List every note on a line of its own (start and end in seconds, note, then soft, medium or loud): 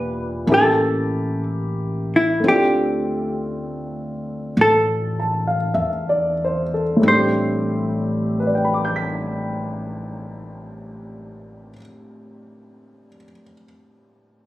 0.00 0.43 E1 medium
0.00 0.45 A#2 soft
0.00 0.47 D4 soft
0.00 0.48 E4 soft
0.00 0.50 G4 soft
0.00 0.52 B4 medium
0.47 2.40 A1 medium
0.47 2.44 A#3 soft
0.47 2.45 C#4 soft
0.47 2.45 E4 soft
0.52 2.46 G4 medium
0.52 1.43 A4 medium
2.16 2.48 E4 medium
2.40 4.54 D2 medium
2.40 6.98 A3 soft
2.40 7.03 C4 soft
2.47 7.05 D4 soft
2.47 7.07 F4 soft
2.47 4.66 G4 medium
4.57 5.71 A1 medium
4.61 6.57 A4 medium
5.20 5.55 A5 soft
5.47 5.89 F5 soft
5.74 6.99 E2 medium
5.74 6.33 E5 soft
6.09 6.62 D5 soft
6.44 6.82 C5 soft
6.74 7.19 A4 soft
6.97 11.68 A2 soft
6.97 11.71 A3 soft
7.02 11.70 A1 medium
7.02 11.73 G3 soft
7.02 11.76 C4 soft
7.06 11.78 D4 soft
7.06 11.81 G4 medium
7.06 11.75 C5 medium
8.40 13.07 B4 soft
8.47 13.14 D5 soft
8.55 13.22 G5 soft
8.64 13.32 B5 soft
8.74 13.41 D6 soft
8.85 13.52 G6 soft
8.96 13.63 B6 soft